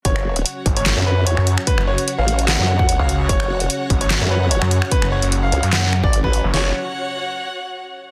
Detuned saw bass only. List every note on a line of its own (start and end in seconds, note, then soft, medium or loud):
0.66 0.95 G#1 loud
1.37 1.56 F#2 loud
1.78 1.96 F#1 medium
2.99 3.28 C#2 loud
3.90 4.19 G#1 loud
4.62 4.80 F#2 loud
5.02 5.21 F#1 loud
5.22 5.51 F#1 loud
5.63 6.02 F#2 loud
6.44 6.52 F#1 loud